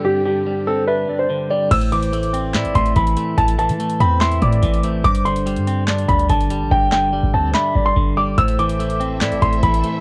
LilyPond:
<<
  \new Staff \with { instrumentName = "Grand piano" } { \time 4/4 \key a \minor \tempo 4 = 144 g'8 g'4 a'8 b'8. c''8. d''8 | e'''8 d'''2 c'''8 b''4 | a''8 a''4 b''8 c'''8 d'''4. | d'''8 c'''2 b''8 a''4 |
g''8 g''4 a''8 b''8. c'''8. d'''8 | e'''8 d'''2 c'''8 b''4 | }
  \new Staff \with { instrumentName = "Soft synth lead" } { \time 4/4 \key a \minor r4. c''8 e''8 d''8 r4 | c''2 d''4 r4 | r4. c''8 e''8 d''4 c''8 | c''2 d''4 r4 |
r4. c''8 e''8 d''8 r4 | c''2 d''4 r4 | }
  \new Staff \with { instrumentName = "String section" } { \time 4/4 \key a \minor <g, d c' g'>1 | r1 | r1 | r1 |
r1 | <a a' c'' e''>1 | }
  \new Staff \with { instrumentName = "Clean electric guitar" } { \clef bass \time 4/4 \key a \minor <g, d g d'>8 d8 g8 c'8 d'8 g,8 d8 g8 | a,8 e8 a8 c'8 e'8 a,8 e8 a8 | a,8 e8 a8 c'8 e'8 a,8 e8 a8 | g,8 d8 g8 c'8 d'8 g,8 d8 g8 |
g,8 d8 g8 c'8 d'8 g,8 d8 g8 | a,8 e8 a8 c'8 e'8 a,8 e8 a8 | }
  \new Staff \with { instrumentName = "808-style bass" } { \clef bass \time 4/4 \key a \minor r1 | a,,2 a,16 a,,16 a,,8 a,,8 r8 | a,,8. e16 r8 e,4 a,8 a,,4 | g,,4~ g,,16 g,4~ g,16 d,8 g,,8. a,,16 |
g,,4~ g,,16 g,,16 d,8 r8 g,,8 g,,4 | a,,2 a,16 a,,16 a,,8 a,,8 r8 | }
  \new DrumStaff \with { instrumentName = "Drums" } \drummode { \time 4/4 r4 r4 r4 r4 | <cymc hh bd>16 hh16 hh16 hh16 hh16 hh16 hh8 <hc hh sn>16 hh16 <hh bd>16 hh16 <hh bd>16 hh16 hh8 | <hh bd>16 hh16 hh16 hh16 hh16 hh16 hh8 <hc hh sn>16 hh16 <hh bd>16 hh16 <hh bd>16 hh16 hh8 | <hh bd>16 hh16 hh16 hh16 hh16 hh16 hh8 <hc hh sn>16 hh16 <hh bd>16 hh16 <hh bd>16 hh16 hh8 |
bd8 <hc sn>8 r16 bd8. <hc sn>8 bd8 bd4 | <hh bd>16 hh16 hh16 hh16 hh16 hh16 hh8 <hc hh sn>16 hh16 <hh bd>16 hh16 <hh bd>16 hh16 hh8 | }
>>